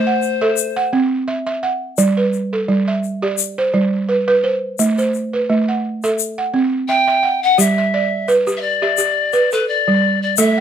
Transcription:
0.00 0.23 A3 medium
0.00 0.89 C5 medium
0.00 0.22 B5 medium
0.07 0.58 F#5 medium
0.22 shaker soft
0.41 0.58 A4 medium
0.41 0.77 E5 medium
0.57 shaker medium
0.77 1.28 F#5 medium
0.93 1.28 C4 medium
1.28 1.45 E5 medium
1.47 1.82 E5 medium
1.63 2.17 F#5 medium
1.98 2.33 G3 medium
1.98 shaker medium
2.17 2.68 B4 medium
2.33 shaker soft
2.53 3.04 A4 medium
2.69 3.03 G3 medium
2.88 3.39 E5 medium
3.04 shaker soft
3.22 3.58 G4 medium
3.22 3.74 D5 medium
3.38 shaker medium
3.58 4.09 C5 medium
3.74 4.09 G3 medium
4.09 4.27 B4 medium
4.28 4.63 B4 medium
4.44 4.97 C5 medium
4.79 5.14 A3 medium
4.79 shaker medium
4.98 5.49 C5 medium
4.98 shaker soft
5.14 shaker soft
5.33 5.84 B4 medium
5.50 5.84 A3 medium
5.68 6.19 F#5 medium
6.03 6.19 A4 medium
6.03 6.38 E5 medium
6.03 shaker soft
6.19 shaker medium
6.38 6.89 F#5 medium
6.54 6.89 C4 medium
6.88 7.06 E5 medium
6.88 7.44 G5 loud
7.08 7.43 E5 medium
7.23 7.77 F#5 medium
7.43 7.61 F#5 medium
7.58 7.93 G3 medium
7.58 8.12 G4 medium
7.58 8.29 E5 medium
7.58 shaker medium
7.78 8.29 E5 medium
7.94 8.48 D5 medium
8.28 8.63 B4 medium
8.28 shaker soft
8.47 8.81 G4 medium
8.47 shaker soft
8.57 8.62 E5 medium
8.61 9.53 D5 medium
8.82 8.97 G4 medium
8.82 9.33 E5 medium
8.98 9.52 G4 medium
8.98 shaker medium
9.33 9.68 B4 medium
9.33 shaker soft
9.52 10.03 A4 medium
9.52 9.69 B4 medium
9.52 shaker soft
9.68 10.21 D5 medium
9.88 10.22 G3 medium
10.22 10.39 D5 medium
10.37 10.60 A3 medium
10.37 10.60 A4 medium
10.37 10.60 E5 loud
10.37 shaker medium

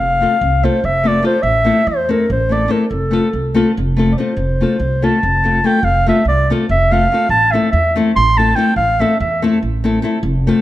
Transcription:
0.00 0.24 F1 medium
0.00 0.66 F5 loud
0.20 0.35 A3 medium
0.20 0.36 C4 medium
0.20 0.36 F4 medium
0.20 0.36 A4 medium
0.41 0.67 C2 medium
0.63 0.78 A3 medium
0.63 0.78 C4 medium
0.63 0.79 F4 medium
0.63 0.79 A4 medium
0.63 0.87 C5 medium
0.84 1.20 F1 medium
0.84 1.09 E5 loud
1.04 1.19 A3 medium
1.04 1.19 C4 medium
1.04 1.19 F4 medium
1.04 1.20 A4 medium
1.04 1.25 D5 medium
1.22 1.38 A3 medium
1.22 1.38 C4 soft
1.22 1.38 F4 medium
1.22 1.39 A4 medium
1.22 1.44 C5 loud
1.42 1.70 A1 medium
1.42 1.89 E5 loud
1.65 1.80 A3 medium
1.65 1.81 C4 medium
1.65 1.81 E4 medium
1.65 1.81 A4 medium
1.87 2.13 E2 medium
1.87 2.12 C5 loud
2.09 2.24 A3 medium
2.09 2.24 C4 medium
2.09 2.25 E4 medium
2.09 2.25 A4 medium
2.09 2.31 A#4 medium
2.30 2.66 A1 loud
2.30 2.54 C5 medium
2.49 2.65 A3 medium
2.49 2.66 C4 soft
2.49 2.66 E4 medium
2.49 2.66 A4 medium
2.49 2.73 D5 medium
2.68 2.84 A3 medium
2.68 2.84 C4 medium
2.68 2.85 E4 medium
2.68 2.85 A4 medium
2.68 2.82 A#4 medium
2.82 2.91 A#4 soft
2.89 3.17 F1 medium
2.89 3.57 A4 medium
3.11 3.27 A3 medium
3.11 3.27 C4 medium
3.11 3.28 F4 medium
3.11 3.28 A4 medium
3.33 3.60 C2 medium
3.54 3.70 A3 medium
3.54 3.71 C4 medium
3.54 3.71 F4 medium
3.54 3.71 A4 medium
3.77 4.14 F1 medium
3.96 4.12 A3 medium
3.96 4.13 C4 medium
3.96 4.13 F4 soft
3.96 4.13 A4 medium
4.12 4.19 D5 medium
4.18 4.32 A3 medium
4.18 4.32 C4 medium
4.18 4.33 F4 medium
4.18 4.33 A4 medium
4.18 5.06 C5 medium
4.37 4.63 F1 medium
4.61 4.75 A3 medium
4.61 4.75 C4 soft
4.61 4.76 F4 medium
4.61 4.76 A4 medium
4.79 5.06 C2 medium
5.02 5.18 A3 medium
5.02 5.18 C4 medium
5.02 5.18 F4 medium
5.02 5.18 A4 medium
5.02 5.67 A5 medium
5.23 5.59 F1 medium
5.44 5.59 A3 medium
5.44 5.59 C4 medium
5.44 5.59 F4 medium
5.44 5.60 A4 medium
5.64 5.78 A3 medium
5.64 5.78 C4 soft
5.64 5.79 F4 medium
5.64 5.79 A4 medium
5.64 5.86 G5 medium
5.83 6.09 F1 medium
5.83 6.08 F5 loud
6.07 6.21 A3 medium
6.07 6.22 C4 medium
6.07 6.22 F4 medium
6.07 6.23 A4 medium
6.07 6.27 E5 medium
6.25 6.52 C2 medium
6.25 6.50 D5 medium
6.50 6.65 A3 medium
6.50 6.65 C4 medium
6.50 6.65 F4 medium
6.50 6.66 A4 medium
6.69 7.06 F1 medium
6.69 6.94 E5 medium
6.91 7.06 A3 medium
6.91 7.06 C4 medium
6.91 7.06 F4 medium
6.91 7.07 A4 medium
6.91 7.30 F5 loud
7.12 7.25 A3 medium
7.12 7.26 C4 medium
7.12 7.26 F4 medium
7.12 7.27 A4 medium
7.29 7.56 A1 medium
7.29 7.53 A5 loud
7.52 7.68 A3 medium
7.52 7.68 C4 medium
7.52 7.69 E4 soft
7.52 7.69 A4 medium
7.52 7.71 E5 medium
7.71 7.99 E2 medium
7.71 7.95 E5 loud
7.96 8.11 A3 medium
7.96 8.11 C4 medium
7.96 8.12 E4 medium
7.96 8.11 A4 medium
8.16 8.53 A1 loud
8.16 8.39 C6 loud
8.38 8.52 A3 medium
8.38 8.53 C4 medium
8.38 8.53 E4 medium
8.38 8.53 A4 medium
8.38 8.57 A5 loud
8.56 8.71 A3 medium
8.56 8.71 C4 medium
8.56 8.72 E4 medium
8.56 8.72 A4 medium
8.56 8.76 G5 medium
8.76 9.02 A1 medium
8.76 9.02 F5 loud
8.99 9.14 A3 medium
8.99 9.15 C4 medium
8.99 9.15 E4 medium
8.99 9.15 A4 medium
8.99 9.20 E5 medium
9.20 9.46 E2 loud
9.20 9.42 E5 medium
9.42 9.57 A3 medium
9.42 9.57 C4 medium
9.42 9.58 E4 medium
9.42 9.58 A4 medium
9.63 9.99 A1 medium
9.84 9.98 A3 medium
9.84 9.98 C4 medium
9.84 9.99 E4 medium
9.84 9.99 A4 medium
10.02 10.17 A3 medium
10.02 10.17 C4 medium
10.02 10.18 E4 medium
10.02 10.18 A4 medium
10.23 10.49 F1 loud
10.47 10.61 A3 medium
10.47 10.61 C4 medium
10.47 10.61 F4 medium
10.47 10.61 A4 medium

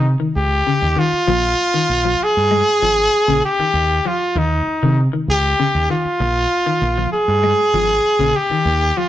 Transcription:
0.00 0.14 C3 medium
0.20 0.37 D#3 medium
0.36 0.61 C#2 medium
0.36 1.00 G4 medium
0.67 0.83 C#3 medium
0.82 0.95 D#2 medium
0.96 1.13 D#3 medium
0.96 2.25 F4 loud
1.12 muted fingered electric bass stroke soft
1.28 1.53 A#1 medium
1.28 1.44 F3 medium
1.74 1.91 D#3 medium
1.89 2.14 A#1 medium
2.05 2.21 F3 medium
2.23 3.44 G#4 loud
2.37 2.61 G2 medium
2.51 2.68 G#3 medium
2.82 3.07 G#1 medium
2.82 2.99 F3 medium
3.28 3.40 A#1 medium
3.28 3.45 C#3 medium
3.45 4.08 G4 medium
3.59 3.76 D#3 medium
3.59 muted fingered electric bass stroke soft
3.74 3.99 D#2 medium
4.05 4.22 F3 medium
4.05 4.39 F4 medium
4.35 4.60 D#2 medium
4.35 4.53 D#3 medium
4.35 5.02 D#4 medium
4.83 5.07 C3 medium
4.83 4.99 D#3 medium
5.13 5.30 D#3 medium
5.28 5.53 C#2 medium
5.28 5.86 G4 medium
5.60 5.76 C#3 medium
5.75 5.87 D#2 medium
5.90 6.06 D#3 medium
5.90 7.09 F4 medium
6.05 muted fingered electric bass stroke soft
6.20 6.45 A#1 medium
6.20 muted clean electric guitar stroke medium
6.66 6.83 D#3 medium
6.81 7.06 A#1 medium
6.98 7.14 F3 medium
7.13 8.37 G#4 medium
7.28 7.53 G2 medium
7.43 7.60 G#3 medium
7.73 7.98 G#1 medium
7.73 7.90 F3 medium
8.04 muted fingered electric bass stroke soft
8.19 8.32 A#1 medium
8.19 8.36 C#3 medium
8.36 8.99 G4 loud
8.50 8.67 D#3 medium
8.50 muted fingered electric bass stroke soft
8.65 8.90 D#2 medium
8.97 9.09 F3 medium
8.97 9.09 F4 medium

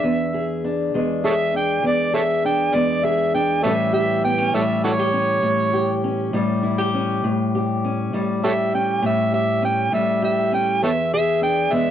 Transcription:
0.00 0.93 E2 medium
0.00 0.62 E5 medium
0.34 1.23 G#4 medium
0.65 1.53 D4 medium
0.94 1.82 E2 medium
0.94 2.73 G#3 medium
1.24 2.12 G#4 medium
1.24 1.33 A4 medium
1.24 1.33 C#5 medium
1.24 1.54 E5 medium
1.54 2.43 D4 medium
1.54 1.84 G5 medium
1.83 2.72 E2 medium
1.83 2.14 D5 medium
2.13 3.03 G#4 medium
2.13 2.21 A4 medium
2.13 2.21 C#5 medium
2.13 2.43 E5 medium
2.45 3.34 D4 medium
2.45 2.76 G5 medium
2.74 3.64 E2 medium
2.74 3.60 G#3 medium
2.74 3.06 D5 medium
3.04 3.60 G#4 medium
3.04 3.33 E5 medium
3.35 3.61 D4 medium
3.35 3.63 G5 medium
3.63 4.54 A2 medium
3.63 7.19 E3 medium
3.63 4.55 G3 medium
3.63 4.23 C#4 medium
3.63 3.92 G4 medium
3.63 3.72 A4 medium
3.63 3.69 C#5 medium
3.63 3.93 E5 medium
3.93 4.84 G4 medium
3.93 4.23 E5 medium
4.23 4.38 B3 medium
4.23 4.53 G5 medium
4.38 5.12 C#4 soft
4.54 5.42 A2 medium
4.54 6.33 G3 medium
4.54 4.62 A4 medium
4.54 4.63 C#5 medium
4.54 4.83 E5 medium
4.84 4.99 E4 medium
4.84 4.91 F#4 medium
4.84 4.91 A4 medium
4.84 6.00 C#5 loud
4.99 5.72 G4 medium
5.13 6.03 C#4 medium
5.43 6.32 A2 medium
5.73 6.63 G4 medium
6.04 6.93 C#4 medium
6.33 7.22 A2 medium
6.33 8.13 G3 medium
6.63 6.78 E4 medium
6.78 7.23 G4 soft
6.94 7.20 C#4 medium
7.24 8.12 A2 medium
7.55 8.43 G4 medium
7.84 8.73 C#4 medium
8.13 9.01 A2 medium
8.13 9.92 G3 medium
8.44 9.32 G4 medium
8.44 8.50 A4 medium
8.44 8.52 C#5 medium
8.44 8.72 E5 medium
8.74 9.61 C#4 medium
8.74 9.03 G5 medium
9.02 9.91 A2 medium
9.02 9.33 E5 medium
9.33 10.21 G4 medium
9.33 9.62 E5 medium
9.62 10.51 C#4 medium
9.62 9.93 G5 medium
9.92 10.82 A2 medium
9.92 10.82 G3 medium
9.92 10.22 E5 medium
10.22 10.79 G4 medium
10.22 10.52 E5 medium
10.52 10.79 C#4 medium
10.52 10.82 G5 medium
10.82 11.71 E2 medium
10.82 10.90 A4 medium
10.82 10.90 C#5 medium
10.82 11.12 E5 medium
11.13 11.91 G#4 medium
11.13 11.42 E5 loud
11.42 11.91 D4 medium
11.42 11.75 G5 medium
11.72 11.91 E2 medium
11.72 11.91 G#3 medium
11.72 11.91 E5 medium

